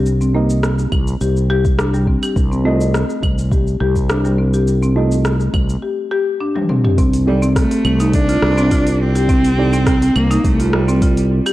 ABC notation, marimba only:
X:1
M:4/4
L:1/16
Q:1/4=104
K:Cdor
V:1 name="Marimba"
z C B,4 z2 G z G z D G, C G | z C A,4 z2 G z G z D G, C G | z C A,4 z2 G z G z D G, C G | C3 C2 C2 E2 F z C F3 G |
C3 C2 C2 E2 F z C F3 G |]